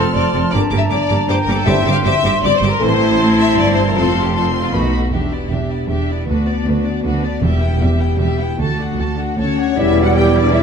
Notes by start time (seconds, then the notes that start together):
Already playing: F3 A3 C4 F4 A4 C5 A5 C6 F6
0.14 F1 F2 C4 A4 D5
0.33 F1 F2 C4 A4
0.51 G1 G2 D3 G3 A#3 D4 G4 A#4 D5 A#5 D6
0.70 G1 G2 A#3 G4 D6
0.77 E5
0.90 G1 G2 A#3 G4 D5 D6
1.08 G1 G2 A#3 G4 D6
1.27 G1 G2 A#3 G4 C5 G5 D6
1.41 A#4
1.47 G1 G2 A#3 G4 D6
1.53 A4
1.65 G1 G2 D3 G3 C4 G4 C5 E5 C6 D6
1.85 G1 G2 C4 G4 D6
1.91 F5
2.03 G1 G2 C4 G4 E5 D6
2.23 G1 G2 C4 G4 D6
2.42 G1 G2 C4 G4 D5 D6
2.56 C5
2.61 G1 G2 C4 G4 D6
2.68 A#4
2.79 A1 A2 E3 A3 C4 E4 A4 C5 A5 C6
3.39 E5
3.57 G1 G2 D5
3.73 C5
3.86 A#4
3.95 F1 F2 F3 A3 C4 F4 A4 C6
4.23 G4
4.35 C4 F4 A4 C6
4.62 F4
4.72 B1 B2 D#3 A3 B3 D#4 F#4 B4 B5
5.12 E1 E2 D4 G4 E5
5.32 B3 E4 D5
5.50 E1 E2 D4 G4 E5
5.71 B3 E4 D5
5.87 E1 E2 D4 G4 E5
6.08 B3 E4 D5
6.27 D2 B3 D4 F#4 B4
6.46 B3 D4 D5
6.66 D2 D4 F#4 B4
6.84 B3 D4 D5
7.04 D2 D4 F#4 B4
7.24 B3 D4 D5
7.41 E1 E2 G3 G4 E5
7.60 B3 E4 G5
7.79 E1 E2 G3 G4 E5
7.99 B3 E4 G5
8.18 E1 E2 G3 G4 E5
8.39 B3 E4 G5
8.58 D2 A3 F#4 A4 A5
8.78 D4 F#4 F#5
8.97 D2 F#4 A4 A5
9.16 D4 F#4 F#5
9.37 D2 C#4 F#4 A4 C#5 A5
9.57 D4 F#4 F#5
9.76 E1 E2 G3 B3 E4 B4 C#5 D5 E5
10.02 F#4 F#5
10.14 G3 B3 G4 B4 D5 G5
10.40 D4 D5
10.53 G3 B3 E4 C#5 D5 E5